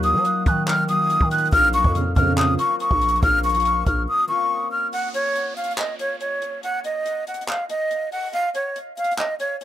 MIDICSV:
0, 0, Header, 1, 7, 480
1, 0, Start_track
1, 0, Key_signature, -5, "minor"
1, 0, Tempo, 425532
1, 1720, Time_signature, 4, 2, 24, 8
1, 10876, End_track
2, 0, Start_track
2, 0, Title_t, "Flute"
2, 0, Program_c, 0, 73
2, 43, Note_on_c, 0, 87, 93
2, 493, Note_off_c, 0, 87, 0
2, 530, Note_on_c, 0, 90, 77
2, 712, Note_off_c, 0, 90, 0
2, 761, Note_on_c, 0, 89, 98
2, 946, Note_off_c, 0, 89, 0
2, 1002, Note_on_c, 0, 87, 102
2, 1453, Note_off_c, 0, 87, 0
2, 1482, Note_on_c, 0, 90, 86
2, 1667, Note_off_c, 0, 90, 0
2, 1718, Note_on_c, 0, 89, 123
2, 1904, Note_off_c, 0, 89, 0
2, 1961, Note_on_c, 0, 85, 88
2, 2223, Note_off_c, 0, 85, 0
2, 2437, Note_on_c, 0, 89, 84
2, 2624, Note_off_c, 0, 89, 0
2, 2678, Note_on_c, 0, 87, 88
2, 2864, Note_off_c, 0, 87, 0
2, 2919, Note_on_c, 0, 85, 90
2, 3105, Note_off_c, 0, 85, 0
2, 3161, Note_on_c, 0, 85, 95
2, 3612, Note_off_c, 0, 85, 0
2, 3643, Note_on_c, 0, 89, 104
2, 3827, Note_off_c, 0, 89, 0
2, 3883, Note_on_c, 0, 85, 91
2, 4333, Note_off_c, 0, 85, 0
2, 4360, Note_on_c, 0, 89, 76
2, 4546, Note_off_c, 0, 89, 0
2, 4606, Note_on_c, 0, 87, 96
2, 4789, Note_off_c, 0, 87, 0
2, 4834, Note_on_c, 0, 85, 100
2, 5288, Note_off_c, 0, 85, 0
2, 5312, Note_on_c, 0, 89, 82
2, 5500, Note_off_c, 0, 89, 0
2, 5558, Note_on_c, 0, 78, 111
2, 5744, Note_off_c, 0, 78, 0
2, 5799, Note_on_c, 0, 73, 86
2, 6251, Note_off_c, 0, 73, 0
2, 6274, Note_on_c, 0, 77, 79
2, 6462, Note_off_c, 0, 77, 0
2, 6529, Note_on_c, 0, 75, 84
2, 6711, Note_off_c, 0, 75, 0
2, 6762, Note_on_c, 0, 73, 87
2, 6947, Note_off_c, 0, 73, 0
2, 6996, Note_on_c, 0, 73, 98
2, 7449, Note_off_c, 0, 73, 0
2, 7480, Note_on_c, 0, 78, 102
2, 7665, Note_off_c, 0, 78, 0
2, 7723, Note_on_c, 0, 75, 89
2, 8173, Note_off_c, 0, 75, 0
2, 8210, Note_on_c, 0, 78, 73
2, 8392, Note_off_c, 0, 78, 0
2, 8440, Note_on_c, 0, 77, 92
2, 8625, Note_off_c, 0, 77, 0
2, 8682, Note_on_c, 0, 75, 99
2, 9132, Note_off_c, 0, 75, 0
2, 9161, Note_on_c, 0, 78, 84
2, 9346, Note_off_c, 0, 78, 0
2, 9397, Note_on_c, 0, 77, 118
2, 9583, Note_off_c, 0, 77, 0
2, 9639, Note_on_c, 0, 73, 88
2, 9902, Note_off_c, 0, 73, 0
2, 10118, Note_on_c, 0, 77, 82
2, 10304, Note_off_c, 0, 77, 0
2, 10358, Note_on_c, 0, 75, 89
2, 10544, Note_off_c, 0, 75, 0
2, 10599, Note_on_c, 0, 73, 89
2, 10785, Note_off_c, 0, 73, 0
2, 10841, Note_on_c, 0, 73, 89
2, 10876, Note_off_c, 0, 73, 0
2, 10876, End_track
3, 0, Start_track
3, 0, Title_t, "Harp"
3, 0, Program_c, 1, 46
3, 0, Note_on_c, 1, 54, 106
3, 0, Note_on_c, 1, 61, 74
3, 122, Note_off_c, 1, 54, 0
3, 135, Note_on_c, 1, 54, 83
3, 149, Note_on_c, 1, 58, 76
3, 164, Note_on_c, 1, 63, 67
3, 179, Note_on_c, 1, 65, 89
3, 971, Note_off_c, 1, 54, 0
3, 984, Note_on_c, 1, 54, 78
3, 994, Note_off_c, 1, 58, 0
3, 999, Note_on_c, 1, 58, 66
3, 1009, Note_off_c, 1, 63, 0
3, 1013, Note_on_c, 1, 63, 75
3, 1023, Note_off_c, 1, 65, 0
3, 1028, Note_on_c, 1, 65, 93
3, 1697, Note_off_c, 1, 58, 0
3, 1702, Note_on_c, 1, 58, 100
3, 1716, Note_on_c, 1, 60, 91
3, 1726, Note_off_c, 1, 61, 0
3, 1731, Note_on_c, 1, 61, 93
3, 1740, Note_off_c, 1, 65, 0
3, 1745, Note_on_c, 1, 65, 111
3, 1777, Note_off_c, 1, 54, 0
3, 2001, Note_off_c, 1, 58, 0
3, 2008, Note_off_c, 1, 60, 0
3, 2015, Note_off_c, 1, 61, 0
3, 2022, Note_off_c, 1, 65, 0
3, 2057, Note_on_c, 1, 58, 77
3, 2071, Note_on_c, 1, 60, 72
3, 2086, Note_on_c, 1, 61, 76
3, 2100, Note_on_c, 1, 65, 86
3, 2358, Note_off_c, 1, 58, 0
3, 2366, Note_off_c, 1, 60, 0
3, 2373, Note_off_c, 1, 61, 0
3, 2380, Note_off_c, 1, 65, 0
3, 2416, Note_on_c, 1, 58, 65
3, 2430, Note_on_c, 1, 60, 64
3, 2444, Note_on_c, 1, 61, 72
3, 2458, Note_on_c, 1, 65, 74
3, 2814, Note_off_c, 1, 58, 0
3, 2821, Note_off_c, 1, 60, 0
3, 2829, Note_off_c, 1, 61, 0
3, 2836, Note_off_c, 1, 65, 0
3, 2896, Note_on_c, 1, 58, 80
3, 2910, Note_on_c, 1, 60, 71
3, 2925, Note_on_c, 1, 61, 68
3, 2939, Note_on_c, 1, 65, 84
3, 3610, Note_off_c, 1, 58, 0
3, 3614, Note_on_c, 1, 58, 100
3, 3624, Note_off_c, 1, 60, 0
3, 3629, Note_on_c, 1, 60, 90
3, 3639, Note_off_c, 1, 61, 0
3, 3643, Note_on_c, 1, 61, 95
3, 3653, Note_off_c, 1, 65, 0
3, 3658, Note_on_c, 1, 65, 105
3, 3917, Note_off_c, 1, 58, 0
3, 3924, Note_off_c, 1, 60, 0
3, 3932, Note_off_c, 1, 61, 0
3, 3939, Note_off_c, 1, 65, 0
3, 3970, Note_on_c, 1, 58, 73
3, 3984, Note_on_c, 1, 60, 73
3, 3999, Note_on_c, 1, 61, 75
3, 4013, Note_on_c, 1, 65, 84
3, 4063, Note_off_c, 1, 63, 0
3, 4814, Note_off_c, 1, 58, 0
3, 4818, Note_on_c, 1, 58, 78
3, 4828, Note_off_c, 1, 60, 0
3, 4832, Note_on_c, 1, 60, 71
3, 4842, Note_off_c, 1, 61, 0
3, 4847, Note_on_c, 1, 61, 76
3, 4857, Note_off_c, 1, 65, 0
3, 4861, Note_on_c, 1, 65, 88
3, 7707, Note_off_c, 1, 65, 0
3, 8116, Note_off_c, 1, 61, 0
3, 8216, Note_off_c, 1, 60, 0
3, 8445, Note_off_c, 1, 58, 0
3, 10876, End_track
4, 0, Start_track
4, 0, Title_t, "Analog polysynth"
4, 0, Program_c, 2, 90
4, 2200, Note_on_c, 2, 34, 84
4, 2200, Note_on_c, 2, 41, 90
4, 2201, Note_on_c, 2, 49, 99
4, 2302, Note_off_c, 2, 34, 0
4, 2302, Note_off_c, 2, 41, 0
4, 2302, Note_off_c, 2, 49, 0
4, 2440, Note_on_c, 2, 34, 103
4, 2440, Note_on_c, 2, 41, 94
4, 2440, Note_on_c, 2, 49, 116
4, 2896, Note_off_c, 2, 34, 0
4, 2896, Note_off_c, 2, 41, 0
4, 2896, Note_off_c, 2, 49, 0
4, 10876, End_track
5, 0, Start_track
5, 0, Title_t, "808-style bass"
5, 0, Program_c, 3, 38
5, 0, Note_on_c, 3, 39, 112
5, 160, Note_on_c, 3, 54, 99
5, 177, Note_off_c, 3, 39, 0
5, 274, Note_off_c, 3, 54, 0
5, 520, Note_on_c, 3, 51, 110
5, 1327, Note_off_c, 3, 51, 0
5, 1360, Note_on_c, 3, 51, 98
5, 1706, Note_off_c, 3, 51, 0
5, 1720, Note_on_c, 3, 34, 115
5, 2066, Note_off_c, 3, 34, 0
5, 2080, Note_on_c, 3, 41, 101
5, 2426, Note_off_c, 3, 41, 0
5, 2441, Note_on_c, 3, 41, 106
5, 2901, Note_off_c, 3, 41, 0
5, 3280, Note_on_c, 3, 34, 105
5, 3625, Note_off_c, 3, 34, 0
5, 3640, Note_on_c, 3, 34, 112
5, 4331, Note_off_c, 3, 34, 0
5, 4360, Note_on_c, 3, 34, 107
5, 4591, Note_off_c, 3, 34, 0
5, 10876, End_track
6, 0, Start_track
6, 0, Title_t, "Downlifter"
6, 0, Program_c, 4, 103
6, 5560, Note_on_c, 4, 60, 85
6, 9400, Note_off_c, 4, 60, 0
6, 10876, End_track
7, 0, Start_track
7, 0, Title_t, "Drums"
7, 40, Note_on_c, 9, 42, 78
7, 153, Note_off_c, 9, 42, 0
7, 280, Note_on_c, 9, 42, 86
7, 393, Note_off_c, 9, 42, 0
7, 520, Note_on_c, 9, 36, 101
7, 520, Note_on_c, 9, 42, 81
7, 633, Note_off_c, 9, 36, 0
7, 633, Note_off_c, 9, 42, 0
7, 760, Note_on_c, 9, 39, 117
7, 760, Note_on_c, 9, 42, 80
7, 873, Note_off_c, 9, 39, 0
7, 873, Note_off_c, 9, 42, 0
7, 1000, Note_on_c, 9, 42, 96
7, 1113, Note_off_c, 9, 42, 0
7, 1241, Note_on_c, 9, 42, 75
7, 1353, Note_off_c, 9, 42, 0
7, 1360, Note_on_c, 9, 36, 92
7, 1473, Note_off_c, 9, 36, 0
7, 1480, Note_on_c, 9, 42, 83
7, 1560, Note_off_c, 9, 42, 0
7, 1560, Note_on_c, 9, 42, 65
7, 1640, Note_off_c, 9, 42, 0
7, 1640, Note_on_c, 9, 42, 48
7, 1720, Note_off_c, 9, 42, 0
7, 1720, Note_on_c, 9, 36, 113
7, 1720, Note_on_c, 9, 42, 81
7, 1833, Note_off_c, 9, 36, 0
7, 1833, Note_off_c, 9, 42, 0
7, 1960, Note_on_c, 9, 42, 77
7, 2073, Note_off_c, 9, 42, 0
7, 2080, Note_on_c, 9, 36, 94
7, 2193, Note_off_c, 9, 36, 0
7, 2201, Note_on_c, 9, 42, 87
7, 2313, Note_off_c, 9, 42, 0
7, 2441, Note_on_c, 9, 36, 102
7, 2441, Note_on_c, 9, 42, 81
7, 2553, Note_off_c, 9, 36, 0
7, 2553, Note_off_c, 9, 42, 0
7, 2680, Note_on_c, 9, 39, 116
7, 2680, Note_on_c, 9, 42, 82
7, 2792, Note_off_c, 9, 39, 0
7, 2793, Note_off_c, 9, 42, 0
7, 2920, Note_on_c, 9, 42, 100
7, 3033, Note_off_c, 9, 42, 0
7, 3160, Note_on_c, 9, 42, 78
7, 3273, Note_off_c, 9, 42, 0
7, 3280, Note_on_c, 9, 36, 94
7, 3392, Note_off_c, 9, 36, 0
7, 3400, Note_on_c, 9, 42, 79
7, 3480, Note_off_c, 9, 42, 0
7, 3480, Note_on_c, 9, 42, 64
7, 3560, Note_off_c, 9, 42, 0
7, 3560, Note_on_c, 9, 42, 48
7, 3640, Note_off_c, 9, 42, 0
7, 3640, Note_on_c, 9, 36, 110
7, 3640, Note_on_c, 9, 42, 79
7, 3753, Note_off_c, 9, 36, 0
7, 3753, Note_off_c, 9, 42, 0
7, 3880, Note_on_c, 9, 42, 50
7, 3940, Note_off_c, 9, 42, 0
7, 3940, Note_on_c, 9, 42, 60
7, 4000, Note_off_c, 9, 42, 0
7, 4000, Note_on_c, 9, 42, 75
7, 4060, Note_off_c, 9, 42, 0
7, 4060, Note_on_c, 9, 42, 84
7, 4120, Note_off_c, 9, 42, 0
7, 4120, Note_on_c, 9, 42, 86
7, 4233, Note_off_c, 9, 42, 0
7, 4360, Note_on_c, 9, 36, 100
7, 4360, Note_on_c, 9, 42, 81
7, 4473, Note_off_c, 9, 36, 0
7, 4473, Note_off_c, 9, 42, 0
7, 5560, Note_on_c, 9, 42, 78
7, 5672, Note_off_c, 9, 42, 0
7, 5800, Note_on_c, 9, 42, 85
7, 5912, Note_off_c, 9, 42, 0
7, 6040, Note_on_c, 9, 42, 82
7, 6152, Note_off_c, 9, 42, 0
7, 6280, Note_on_c, 9, 42, 64
7, 6360, Note_off_c, 9, 42, 0
7, 6360, Note_on_c, 9, 42, 64
7, 6440, Note_off_c, 9, 42, 0
7, 6440, Note_on_c, 9, 42, 61
7, 6519, Note_on_c, 9, 39, 114
7, 6520, Note_off_c, 9, 42, 0
7, 6520, Note_on_c, 9, 42, 82
7, 6632, Note_off_c, 9, 39, 0
7, 6633, Note_off_c, 9, 42, 0
7, 6760, Note_on_c, 9, 42, 87
7, 6873, Note_off_c, 9, 42, 0
7, 7000, Note_on_c, 9, 42, 76
7, 7113, Note_off_c, 9, 42, 0
7, 7240, Note_on_c, 9, 42, 80
7, 7353, Note_off_c, 9, 42, 0
7, 7480, Note_on_c, 9, 42, 77
7, 7593, Note_off_c, 9, 42, 0
7, 7720, Note_on_c, 9, 42, 81
7, 7833, Note_off_c, 9, 42, 0
7, 7960, Note_on_c, 9, 42, 86
7, 8073, Note_off_c, 9, 42, 0
7, 8200, Note_on_c, 9, 42, 60
7, 8280, Note_off_c, 9, 42, 0
7, 8280, Note_on_c, 9, 42, 62
7, 8360, Note_off_c, 9, 42, 0
7, 8360, Note_on_c, 9, 42, 62
7, 8439, Note_on_c, 9, 39, 116
7, 8440, Note_off_c, 9, 42, 0
7, 8440, Note_on_c, 9, 42, 76
7, 8552, Note_off_c, 9, 39, 0
7, 8553, Note_off_c, 9, 42, 0
7, 8680, Note_on_c, 9, 42, 90
7, 8793, Note_off_c, 9, 42, 0
7, 8920, Note_on_c, 9, 42, 75
7, 9033, Note_off_c, 9, 42, 0
7, 9160, Note_on_c, 9, 46, 81
7, 9273, Note_off_c, 9, 46, 0
7, 9400, Note_on_c, 9, 42, 77
7, 9513, Note_off_c, 9, 42, 0
7, 9640, Note_on_c, 9, 42, 84
7, 9753, Note_off_c, 9, 42, 0
7, 9880, Note_on_c, 9, 42, 84
7, 9993, Note_off_c, 9, 42, 0
7, 10120, Note_on_c, 9, 42, 63
7, 10200, Note_off_c, 9, 42, 0
7, 10200, Note_on_c, 9, 42, 62
7, 10280, Note_off_c, 9, 42, 0
7, 10280, Note_on_c, 9, 42, 60
7, 10360, Note_off_c, 9, 42, 0
7, 10360, Note_on_c, 9, 39, 115
7, 10360, Note_on_c, 9, 42, 80
7, 10472, Note_off_c, 9, 39, 0
7, 10473, Note_off_c, 9, 42, 0
7, 10600, Note_on_c, 9, 42, 87
7, 10713, Note_off_c, 9, 42, 0
7, 10840, Note_on_c, 9, 42, 76
7, 10876, Note_off_c, 9, 42, 0
7, 10876, End_track
0, 0, End_of_file